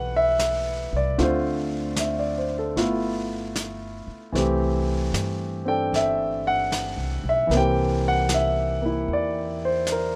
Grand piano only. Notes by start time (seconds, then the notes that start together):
Already playing: E3 A3 B3 G4 B4 F#5
0.16 E5
0.96 D5
1.18 D3 A3 C4 F4
1.23 C5
1.99 E5
2.19 D5
2.38 C5
2.59 A4
2.76 A3 B3 E4 F4
4.32 E3 A3 C4
4.37 G4
5.65 C4 D4 A4 G5
5.96 E5
6.47 F#5
7.29 E5
7.47 E3
7.51 A#3 C4
7.57 G4 G5
8.08 F#5
8.34 E5
8.82 A#3 E4
9.13 D5
9.65 C5
9.92 A#4